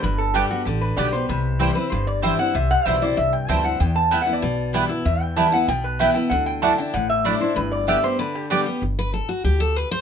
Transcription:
<<
  \new Staff \with { instrumentName = "Resonator guitar played with a steel bar" } { \time 4/4 \key g \major \tempo 4 = 191 b'8 a'8 g'8 fis'8 g'8 b'8 d''8 c''8 | b'4. b'8 c''8 d''8 e''8 fis''8 | e''8 fis''8 e''8 d''8 e''8 g''8 a''8 fis''8 | g''8 a''8 \tuplet 3/2 { g''8 fis''8 d''8~ } d''4 r4 |
e''8 g''8 a''8 fis''8 g''8 b'8 e''8 g''8 | fis''8 g''8 a''8 g''8 fis''8 e''8 d''8 c''8 | b'8 d''8 e''8 c''8 b'8 g'8 r4 | r1 | }
  \new Staff \with { instrumentName = "Mandolin" } { \time 4/4 \key g \major r4 <b g' d'' g''>8 r4. <b g' d'' g''>8 r8 | r4 <c' e' c'' g''>8 r4. <c' e' c'' g''>8 r8 | r4 <c' e' c'' g''>8 r4. <c' e' c'' g''>8 r8 | r4 <b e' b' g''>8 r4. <b e' b' g''>8 r8 |
r4 <b e' b' g''>8 r4. <b e' b' g''>8 r8 | r4 <a e' d'' fis''>8 r4. <a e' d'' fis''>8 r8 | r4 <b g' d'' g''>8 r4. <b g' d'' g''>8 r8 | r1 | }
  \new Staff \with { instrumentName = "Steel-string acoustic guitar" } { \time 4/4 \key g \major << { r4 <d g b g'>8 <b g'>8 r4 <d g b g'>8 <b g'>8 | r4 <e g c' e'>8 <c' e'>8 r4 <e g c' e'>8 <c' e'>8 | r4 <e g c' e'>8 <c' e'>8 r4 <e g c' e'>8 <c' e'>8 | r4 <e g b e'>8 <b e'>8 r4 <e g b e'>8 <b e'>8 |
r4 <e g b e'>8 <b e'>8 r4 <e g b e'>8 <b e'>8 | r4 <fis a d' e'>8 <d' e'>8 r4 <fis a d' e'>8 <d' e'>8 | r4 <d g b g'>8 <b g'>8 r4 <d g b g'>8 <b g'>8 | r8 b'8 a'8 fis'8 g'8 a'8 b'8 c''8 | } \\ { g,2 d2 | c2 g,2 | c2 g,2 | e,2 b,2 |
e,2 b,2 | d2 a,2 | g,2 d2 | r1 | } >> }
  \new Staff \with { instrumentName = "Upright bass" } { \clef bass \time 4/4 \key g \major g,,2 a,,4 b,,4 | c,2 g,,2 | c,4 b,,4 c,4 d,4 | e,2 b,,2 |
e,2 b,,2 | d,2 a,,2 | g,,2 r2 | g,,2 d,2 | }
>>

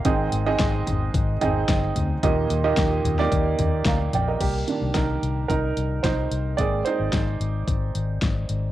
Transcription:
<<
  \new Staff \with { instrumentName = "Grand piano" } { \time 4/4 \key c \minor \tempo 4 = 110 << { <aes, ees>4. r2 r8 | bes,4. r4. <f'' bes''>8 <d'' g''>16 <bes' ees''>16~ | <bes' ees''>16 r16 <ees bes d'>4. r2 | <aes bes c'>1 | } \\ { <c' ees' aes' ees''>8. <c' ees' aes' ees''>4. r16 <c' ees' aes' ees''>4~ <c' ees' aes' ees''>16 r16 | <bes ees' g' ees''>8. <bes ees' g' ees''>4 <bes ees' g' d''>4.~ <bes ees' g' d''>16 r8 | <bes g'>4 <ees' bes'>4 <ees' bes'>4 <ees' c''>4 | <aes' d''>8 <ees' c''>4 r2 r8 | } >> }
  \new Staff \with { instrumentName = "Fingered electric bass" } { \clef bass \time 4/4 \key c \minor aes,,8 aes,,8 aes,,8 aes,,8 aes,,8 aes,,8 g,,8 d,8 | ees,8 ees,8 ees,8 ees,8 ees,8 ees,8 d,8 bes,,8 | c,8 r16 c,16 c,8 c,8 c,8 c,8 c,8 c,8 | aes,,8 r16 aes,,16 aes,,8 aes,,8 aes,,8 aes,,8 aes,,8 aes,,8 | }
  \new DrumStaff \with { instrumentName = "Drums" } \drummode { \time 4/4 <hh bd>8 hh8 <hh bd sn>8 <hh tomfh>8 <hh bd>8 <hh tomfh>8 <hh bd sn>8 <hh tomfh>8 | <hh bd>8 hh8 <hh bd sn>8 <hh tomfh>16 sn16 <hh bd>8 <hh tomfh>8 <hh bd sn>8 <hh tomfh>8 | <cymc hh bd>8 hh8 <hh bd sn>8 hh8 <hh bd>8 hh8 <hh bd sn>8 hh8 | <hh bd>8 hh8 <hh bd sn>8 hh8 <hh bd>8 hh8 <hh bd sn>8 hh8 | }
>>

